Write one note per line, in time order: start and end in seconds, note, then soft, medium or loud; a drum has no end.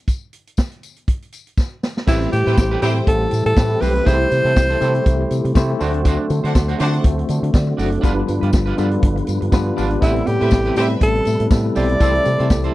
0.08 kick medium
0.08 closed hi-hat medium
0.08 tambourine medium
0.33 closed hi-hat medium
0.47 closed hi-hat soft
0.57 kick medium
0.57 snare loud
0.57 tambourine medium
0.71 closed hi-hat soft
0.83 closed hi-hat medium
0.83 tambourine soft
0.96 closed hi-hat soft
1.08 kick loud
1.08 closed hi-hat medium
1.22 closed hi-hat soft
1.32 closed hi-hat medium
1.32 tambourine medium
1.47 closed hi-hat soft
1.57 kick loud
1.57 snare medium
1.57 tambourine medium
1.83 snare medium
1.83 tambourine soft
1.97 snare medium
2.07 2.25 A1 loud
2.07 4.05 E3 medium
2.07 4.05 G3 medium
2.07 2.72 A3 medium
2.07 4.05 A3 medium
2.07 2.27 C4 medium
2.07 2.72 C4 medium
2.07 5.77 C4 medium
2.07 2.72 E4 medium
2.07 2.31 E4 loud
2.07 2.73 G4 medium
2.07 5.77 G4 medium
2.07 2.22 G4 medium
2.07 2.73 B4 loud
2.07 2.20 B4 loud
2.07 kick loud
2.07 crash medium
2.07 tambourine medium
2.21 muted clean electric guitar stroke soft
2.21 closed hi-hat soft
2.32 2.43 A2 loud
2.32 2.79 G4 loud
2.32 muted clean electric guitar stroke soft
2.32 closed hi-hat medium
2.32 tambourine soft
2.47 2.54 A2 medium
2.47 2.57 C4 medium
2.47 2.56 E4 medium
2.47 2.57 G4 medium
2.47 2.58 B4 medium
2.47 2.56 C5 medium
2.47 2.56 G5 loud
2.47 closed hi-hat soft
2.57 2.75 A1 loud
2.57 muted clean electric guitar stroke medium
2.57 kick loud
2.57 snare loud
2.57 tambourine medium
2.71 2.81 C4 medium
2.71 2.82 G4 medium
2.71 2.83 B4 medium
2.82 3.00 A2 loud
2.82 3.47 A3 medium
2.82 3.47 C4 medium
2.82 2.98 C4 medium
2.82 3.04 E4 loud
2.82 3.47 E4 medium
2.82 2.94 G4 medium
2.82 3.47 G4 medium
2.82 2.97 G4 medium
2.82 2.96 B4 medium
2.82 3.03 C5 loud
2.82 3.47 C5 medium
2.82 3.04 G5 loud
2.82 closed hi-hat medium
2.82 tambourine medium
2.96 muted clean electric guitar stroke medium
2.96 closed hi-hat soft
3.07 3.25 A1 loud
3.07 3.44 A4 loud
3.07 muted clean electric guitar stroke soft
3.07 kick loud
3.07 closed hi-hat medium
3.21 muted clean electric guitar stroke medium
3.31 3.42 A2 medium
3.31 closed hi-hat medium
3.31 tambourine medium
3.46 3.54 A2 loud
3.46 3.83 A4 loud
3.46 muted clean electric guitar stroke medium
3.46 closed hi-hat medium
3.57 3.75 A2 medium
3.57 3.78 A3 medium
3.57 3.79 C4 medium
3.57 3.79 E4 medium
3.57 3.79 G4 medium
3.57 3.79 B4 medium
3.57 muted clean electric guitar stroke medium
3.57 kick loud
3.57 snare loud
3.57 tambourine medium
3.70 muted clean electric guitar stroke soft
3.70 closed hi-hat soft
3.81 3.99 B1 loud
3.81 4.03 A3 medium
3.81 4.01 C4 medium
3.81 4.03 C4 medium
3.81 4.04 E4 medium
3.81 3.95 G4 medium
3.81 4.04 G4 medium
3.81 4.08 B4 loud
3.81 4.04 B4 medium
3.81 3.95 C5 medium
3.81 snare soft
3.81 open hi-hat medium
3.81 tambourine medium
3.95 muted clean electric guitar stroke medium
3.95 closed hi-hat soft
4.05 4.24 C2 loud
4.05 5.79 E3 medium
4.05 5.79 G3 medium
4.05 4.71 A3 medium
4.05 8.00 A3 medium
4.05 4.72 C4 medium
4.05 4.27 E4 medium
4.05 4.72 E4 medium
4.05 4.72 G4 medium
4.05 4.20 A4 loud
4.05 4.14 B4 medium
4.05 5.56 C5 loud
4.05 4.18 C5 loud
4.05 kick loud
4.05 closed hi-hat medium
4.05 tambourine medium
4.14 4.75 C5 medium
4.19 muted clean electric guitar stroke soft
4.19 closed hi-hat soft
4.30 4.41 C3 medium
4.30 muted clean electric guitar stroke soft
4.30 closed hi-hat medium
4.30 tambourine soft
4.44 4.53 C3 medium
4.44 4.54 E4 medium
4.44 4.55 A4 medium
4.44 4.55 C5 medium
4.44 closed hi-hat medium
4.56 4.74 C2 loud
4.56 kick loud
4.56 snare loud
4.56 tambourine loud
4.69 4.80 E4 medium
4.69 4.81 A4 medium
4.69 4.82 C5 medium
4.69 closed hi-hat soft
4.81 4.99 C3 loud
4.81 5.45 A3 medium
4.81 5.46 C4 medium
4.81 4.97 E4 medium
4.81 5.46 E4 medium
4.81 5.46 G4 medium
4.81 4.95 A4 medium
4.81 5.46 C5 loud
4.81 4.94 C5 medium
4.81 closed hi-hat medium
4.81 tambourine medium
4.95 muted clean electric guitar stroke medium
4.95 closed hi-hat soft
5.06 5.24 C2 loud
5.06 muted clean electric guitar stroke soft
5.06 kick loud
5.06 closed hi-hat medium
5.06 tambourine soft
5.21 muted clean electric guitar stroke soft
5.30 5.41 C3 medium
5.30 closed hi-hat medium
5.30 tambourine medium
5.45 5.53 C3 medium
5.45 muted clean electric guitar stroke soft
5.45 closed hi-hat medium
5.55 5.73 C3 loud
5.55 5.77 A3 loud
5.55 5.77 C4 medium
5.55 5.77 E4 medium
5.55 5.77 G4 medium
5.55 5.78 C5 loud
5.55 muted clean electric guitar stroke soft
5.55 kick loud
5.55 snare loud
5.55 tambourine medium
5.70 muted clean electric guitar stroke medium
5.80 6.16 D2 loud
5.80 8.02 D3 medium
5.80 8.02 F#3 medium
5.80 6.66 A3 medium
5.80 6.66 C4 medium
5.80 8.02 C4 medium
5.80 6.66 D4 medium
5.80 6.01 D4 medium
5.80 8.02 F#4 medium
5.80 6.66 F#4 medium
5.80 5.94 F#4 medium
5.80 6.66 C5 loud
5.80 5.94 D5 medium
5.80 open hi-hat medium
5.80 tambourine medium
5.94 muted clean electric guitar stroke medium
5.94 closed hi-hat soft
6.05 6.25 D4 medium
6.05 6.20 F#4 loud
6.05 6.19 C5 loud
6.05 kick loud
6.05 closed hi-hat medium
6.05 tambourine medium
6.20 muted clean electric guitar stroke soft
6.30 6.40 D3 loud
6.30 muted clean electric guitar stroke soft
6.30 closed hi-hat medium
6.30 tambourine soft
6.44 6.52 D3 loud
6.44 6.54 D4 medium
6.44 6.55 F#4 medium
6.44 6.55 C5 medium
6.44 6.54 C5 medium
6.44 6.54 F#5 medium
6.44 closed hi-hat soft
6.55 6.73 D2 loud
6.55 muted clean electric guitar stroke soft
6.55 kick loud
6.55 snare loud
6.55 tambourine medium
6.68 6.78 D4 medium
6.68 6.80 F#4 medium
6.68 6.80 C5 medium
6.68 closed hi-hat soft
6.78 6.98 D3 loud
6.78 7.44 A3 loud
6.78 7.44 C4 medium
6.78 7.44 D4 medium
6.78 6.96 D4 medium
6.78 7.01 D4 loud
6.78 6.86 F4 medium
6.78 6.94 F#4 medium
6.78 7.45 C5 loud
6.78 7.01 C5 loud
6.78 6.93 C5 medium
6.78 7.01 F#5 loud
6.78 closed hi-hat medium
6.78 tambourine medium
6.85 7.47 F#4 medium
6.93 muted clean electric guitar stroke medium
6.93 closed hi-hat soft
7.04 7.22 D2 loud
7.04 muted clean electric guitar stroke soft
7.04 kick loud
7.04 closed hi-hat medium
7.04 tambourine soft
7.18 muted clean electric guitar stroke soft
7.18 closed hi-hat soft
7.28 7.39 D3 loud
7.28 closed hi-hat medium
7.28 tambourine medium
7.43 7.51 D3 loud
7.43 muted clean electric guitar stroke soft
7.43 closed hi-hat medium
7.54 7.72 D3 loud
7.54 7.78 A4 medium
7.54 7.78 D5 medium
7.54 muted clean electric guitar stroke soft
7.54 kick loud
7.54 snare loud
7.54 tambourine medium
7.67 muted clean electric guitar stroke medium
7.77 7.96 F#1 loud
7.77 7.98 D4 medium
7.77 8.26 E4 medium
7.77 7.91 F#4 medium
7.77 8.26 A4 medium
7.77 7.91 D5 medium
7.77 open hi-hat medium
7.77 tambourine medium
7.91 muted clean electric guitar stroke soft
7.91 closed hi-hat soft
8.01 8.21 G1 loud
8.01 10.00 D3 medium
8.01 10.00 F3 medium
8.01 8.68 G3 loud
8.01 10.00 G3 medium
8.01 8.68 B3 medium
8.01 8.23 D4 medium
8.01 8.68 D4 loud
8.01 8.16 F4 loud
8.01 10.00 F4 medium
8.01 8.68 F4 loud
8.01 11.96 B4 medium
8.01 8.15 B4 loud
8.01 8.69 B4 loud
8.01 kick loud
8.01 closed hi-hat medium
8.01 tambourine medium
8.16 muted clean electric guitar stroke medium
8.27 8.39 G2 loud
8.27 muted clean electric guitar stroke soft
8.27 closed hi-hat medium
8.27 tambourine soft
8.41 8.50 G2 loud
8.41 8.52 D4 medium
8.41 8.52 F4 medium
8.41 8.53 B4 medium
8.41 closed hi-hat soft
8.53 8.71 G1 loud
8.53 kick loud
8.53 snare loud
8.53 tambourine medium
8.66 8.76 D4 medium
8.66 8.77 F4 medium
8.66 8.78 B4 medium
8.66 closed hi-hat soft
8.77 8.96 G2 medium
8.77 9.42 G3 medium
8.77 9.42 B3 medium
8.77 8.94 D4 medium
8.77 9.43 D4 medium
8.77 9.43 F4 medium
8.77 8.92 F4 medium
8.77 8.85 A4 medium
8.77 8.90 B4 medium
8.77 closed hi-hat medium
8.77 tambourine medium
8.84 9.46 B4 medium
8.91 muted clean electric guitar stroke soft
8.91 closed hi-hat soft
9.02 9.20 G1 loud
9.02 muted clean electric guitar stroke soft
9.02 kick loud
9.02 closed hi-hat medium
9.16 muted clean electric guitar stroke medium
9.16 closed hi-hat soft
9.27 9.38 G2 loud
9.27 closed hi-hat medium
9.27 tambourine medium
9.41 9.50 G2 loud
9.41 muted clean electric guitar stroke soft
9.41 closed hi-hat soft
9.52 9.70 G2 medium
9.52 9.74 G3 loud
9.52 9.74 B3 medium
9.52 9.74 D4 medium
9.52 9.74 F4 medium
9.52 9.75 B4 loud
9.52 muted clean electric guitar stroke medium
9.52 kick loud
9.52 snare loud
9.52 tambourine medium
9.67 muted clean electric guitar stroke soft
9.76 9.96 G#1 loud
9.76 9.98 G3 medium
9.76 9.99 B3 medium
9.76 9.97 D4 medium
9.76 9.99 D4 medium
9.76 9.99 F4 medium
9.76 9.91 F4 medium
9.76 9.99 B4 loud
9.76 9.90 D5 medium
9.76 open hi-hat medium
9.76 tambourine medium
9.91 muted clean electric guitar stroke medium
9.91 closed hi-hat soft
10.01 10.20 A1 loud
10.01 11.99 C3 medium
10.01 10.66 G3 medium
10.01 12.74 G3 medium
10.01 12.74 A3 medium
10.01 10.66 B3 medium
10.01 10.22 C4 loud
10.01 10.67 C4 medium
10.01 10.28 E4 loud
10.01 11.99 E4 medium
10.01 10.67 E4 medium
10.01 10.15 G4 loud
10.01 10.67 A4 loud
10.01 10.14 B4 loud
10.01 kick loud
10.01 closed hi-hat medium
10.01 tambourine medium
10.15 muted clean electric guitar stroke medium
10.15 closed hi-hat soft
10.26 10.37 A2 loud
10.26 10.77 G4 loud
10.26 muted clean electric guitar stroke soft
10.26 closed hi-hat medium
10.26 tambourine soft
10.40 10.49 A2 loud
10.40 10.50 C4 medium
10.40 10.51 C4 medium
10.40 10.52 G4 medium
10.40 10.50 B4 medium
10.40 10.52 B4 medium
10.40 10.50 E5 loud
10.40 closed hi-hat soft
10.51 10.69 A1 loud
10.51 kick loud
10.51 snare loud
10.51 tambourine medium
10.65 10.76 C4 medium
10.65 10.76 G4 medium
10.65 10.77 B4 medium
10.65 closed hi-hat soft
10.76 10.94 A2 medium
10.76 11.41 G3 medium
10.76 11.41 B3 medium
10.76 11.41 C4 medium
10.76 10.93 C4 medium
10.76 10.98 C4 loud
10.76 11.41 E4 medium
10.76 10.90 G4 medium
10.76 10.89 G4 medium
10.76 11.42 A4 medium
10.76 10.98 B4 loud
10.76 10.89 B4 medium
10.76 10.98 E5 loud
10.76 closed hi-hat medium
10.76 tambourine medium
10.90 muted clean electric guitar stroke soft
10.90 closed hi-hat soft
11.00 11.19 A1 loud
11.00 11.48 A4 loud
11.00 muted clean electric guitar stroke soft
11.00 kick loud
11.00 closed hi-hat medium
11.00 tambourine soft
11.15 muted clean electric guitar stroke medium
11.15 closed hi-hat soft
11.25 11.36 A2 medium
11.25 closed hi-hat medium
11.25 tambourine medium
11.39 11.48 A2 loud
11.39 muted clean electric guitar stroke soft
11.39 closed hi-hat medium
11.50 11.69 A2 medium
11.50 11.72 G3 medium
11.50 11.72 B3 medium
11.50 11.73 C4 medium
11.50 11.73 E4 medium
11.50 11.73 A4 medium
11.50 kick loud
11.50 snare loud
11.50 tambourine medium
11.65 muted clean electric guitar stroke soft
11.75 11.94 B1 loud
11.75 11.97 G3 medium
11.75 11.97 B3 medium
11.75 11.96 C4 medium
11.75 11.97 C4 medium
11.75 11.98 E4 medium
11.75 11.89 G4 medium
11.75 11.98 A4 medium
11.75 11.89 C5 medium
11.75 12.71 D5 loud
11.75 open hi-hat medium
11.75 tambourine medium
11.89 muted clean electric guitar stroke medium
11.89 closed hi-hat medium
12.00 12.18 C2 loud
12.00 12.74 E3 medium
12.00 12.65 G3 loud
12.00 12.65 A3 medium
12.00 12.65 C4 medium
12.00 12.74 C4 medium
12.00 12.20 E4 medium
12.00 12.65 E4 medium
12.00 12.74 G4 medium
12.00 12.15 A4 loud
12.00 12.65 A4 loud
12.00 12.14 C5 loud
12.00 kick loud
12.00 closed hi-hat medium
12.00 tambourine medium
12.15 muted clean electric guitar stroke soft
12.15 closed hi-hat soft
12.25 12.36 C3 medium
12.25 muted clean electric guitar stroke soft
12.25 closed hi-hat medium
12.25 tambourine soft
12.39 12.47 C3 loud
12.39 12.49 E4 medium
12.39 12.50 A4 medium
12.39 12.51 C5 medium
12.39 closed hi-hat soft
12.50 12.68 C2 medium
12.50 kick loud
12.50 snare loud
12.50 tambourine medium
12.64 12.73 E4 medium
12.64 12.74 A4 medium
12.64 12.74 C5 medium
12.64 closed hi-hat soft